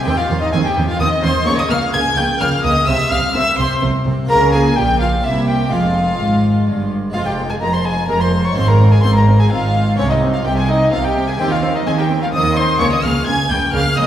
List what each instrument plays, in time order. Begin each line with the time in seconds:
0.03 double bass section D#2, cello section D#3, harpsichord D#3 C4 G4, viola section C4, violin section G4 G5, violin G5
0.18 violin section F4 F5, violin F5
0.29 double bass section D#2, harpsichord D#3, cello section D#3, viola section C4
0.41 violin section D#4 D#5, violin D#5
0.52 double bass section D#2, cello section D#3, harpsichord D#3, viola section C4, violin section G#4 G#5, violin G#5
0.65 violin section G4 G5, violin G5
0.76 double bass section D#2, cello section D#3, harpsichord D#3, viola section C4
0.88 violin section F4 F5, violin F5
0.99 double bass section D#2, harpsichord D#3, cello section D#3, viola section C4, violin section D#5 D#6, violin D#6
1.23 double bass section D#2, harpsichord D#3, cello section D#3, viola section C4, violin section C5 C6, violin C6
1.42 harpsichord A#3 F4 A#4, violin section C#6
1.46 double bass section C#2, cello section C#3, harpsichord C#3, viola section A#3, violin section C#5, violin C#6
1.58 violin section D#5 D#6, violin D#6
1.69 double bass section C#2, cello section C#3, harpsichord C#3, viola section A#3, violin section F5 F6, violin F6
1.93 double bass section C#2, cello section C#3, harpsichord C#3, viola section A#3, violin section G#5 G#6, violin G#6
2.17 double bass section C#2, cello section C#3, harpsichord C#3, viola section A#3, violin section G5 G6, violin G6
2.40 double bass section C#2, cello section C#3, harpsichord C#3, viola section A#3, violin section F5 F6, violin F6
2.64 double bass section C#2, cello section C#3, harpsichord C#3, viola section A#3, violin section D#5 D#6, violin D#6
2.85 double bass section C2, cello section C3, harpsichord C3 G4 C5, viola section C4, violin section E5 E6, violin E6
3.11 double bass section C2, cello section C3, harpsichord C3, viola section C4, violin section F5 F6, violin F6
3.34 double bass section C2, harpsichord C3, cello section C3, viola section C4, violin section E5 E6, violin E6
3.58 double bass section C2, cello section C3, harpsichord C3, viola section C4, violin section C5 C6, violin C6
3.81 double bass section C2, harpsichord C3, cello section C3, viola section C4
4.05 double bass section C2, harpsichord C3, cello section C3, viola section C4
4.25 double bass section C#2, harpsichord A#3 F4 A#4, viola section A#3
4.29 cello section C#3, harpsichord C#3, violin section A#4 A#5, violin A#5
4.52 violin section G#4 G#5, violin G#5
4.76 double bass section A#1, harpsichord A#2, cello section A#2, violin section G4 G5, violin G5
5.00 violin section F4 F5, violin F5
5.19 harpsichord A#3 C4 G4
5.24 double bass section C2, harpsichord C3, cello section C3, viola section A#3, violin section E4 E5, violin E5
5.47 violin section G4 G5, violin G5
5.67 harpsichord G#3 C4 F4, viola section G#3
5.72 double bass section F1, cello section F2, harpsichord F2, violin section F4 F5, violin F5
6.19 double bass section G#1, harpsichord G#2, cello section G#2
6.67 double bass section G1, cello section G2, harpsichord G2
7.10 double bass section F1, harpsichord G#3 C4 F4, violin F5
7.14 harpsichord F2, cello section F2, viola section G#3, violin section F4 F5
7.25 violin section G4 G5, violin G5
7.38 viola section G#3
7.49 violin section G#4 G#5, violin G#5
7.61 double bass section F1, harpsichord F2, cello section F2, viola section G#3, violin section A#4 A#5, violin A#5
7.73 violin section C5 C6, violin C6
7.84 viola section G#3, violin section G#4 G#5, violin G#5
8.08 double bass section F1, harpsichord F2, cello section F2, viola section G#3, violin section A#4 A#5, violin A#5
8.20 violin section C5 C6, violin C6
8.32 viola section G#3
8.44 violin section C#5 C#6, violin C#6
8.51 harpsichord G#3 C4 F4
8.55 double bass section G#1, harpsichord G#2, cello section G#2, viola section C4, violin section C5 C6, violin C6
8.68 violin section A#4 A#5, violin A#5
8.80 viola section C4
8.92 violin section G#4 G#5, violin G#5
9.03 double bass section G#1, cello section G#2, harpsichord G#2, viola section C4, violin section C5 C6, violin C6
9.15 violin section A#4 A#5, violin A#5
9.27 viola section C4
9.39 violin section G#4 G#5, violin G#5
9.50 double bass section G#1, harpsichord G#2, cello section G#2, viola section C4, violin section F4 F5, violin F5
9.74 viola section C4
9.95 double bass section C2, cello section C3, harpsichord C3 C4 G4, viola section C4, violin section C#4 C#5, violin C#5
10.10 violin section D#4 D#5, violin D#5
10.21 viola section C4
10.33 violin section F4 F5, violin F5
10.45 double bass section C2, harpsichord C3, cello section C3, viola section C4, violin section G4 G5, violin G5
10.57 violin section G#4 G#5, violin G#5
10.68 viola section C4, violin section D#4 D#5, violin D#5
10.92 double bass section C2, cello section C3, harpsichord C3, viola section C4, violin section F4 F5, violin F5
11.04 violin section G4 G5, violin G5
11.15 viola section C4
11.28 violin section G#4 G#5, violin G#5
11.37 double bass section D#2, cello section D#3, harpsichord D#3 C4 G4, viola section C4, violin section G4 G5, violin G5
11.51 violin section F4 F5, violin F5
11.62 viola section C4
11.74 violin section D#4 D#5, violin D#5
11.86 double bass section D#2, cello section D#3, harpsichord D#3, viola section C4, violin section G#4 G#5, violin G#5
11.98 violin section G4 G5, violin G5
12.09 viola section C4
12.22 violin section F4 F5, violin F5
12.33 double bass section D#2, cello section D#3, harpsichord D#3, viola section C4, violin section D#5 D#6, violin D#6
12.56 viola section C4, violin section C5 C6, violin C6
12.75 harpsichord A#3 F4 A#4, viola section A#3, violin section C#6
12.80 double bass section C#2, harpsichord C#3, cello section C#3, violin section C#5, violin C#6
12.92 violin section D#5 D#6, violin D#6
13.03 double bass section C#2, harpsichord C#3, cello section C#3, viola section A#3, violin section F5 F6, violin F6
13.26 double bass section C#2, cello section C#3, harpsichord C#3, viola section A#3, violin section G#5 G#6, violin G#6
13.49 double bass section C#2, harpsichord C#3, cello section C#3, viola section A#3, violin section G5 G6, violin G6
13.73 double bass section C#2, harpsichord C#3, cello section C#3, viola section A#3, violin section F5 F6, violin F6
13.96 double bass section C#2, harpsichord C#3, cello section C#3, viola section A#3, violin section D#5 D#6, violin D#6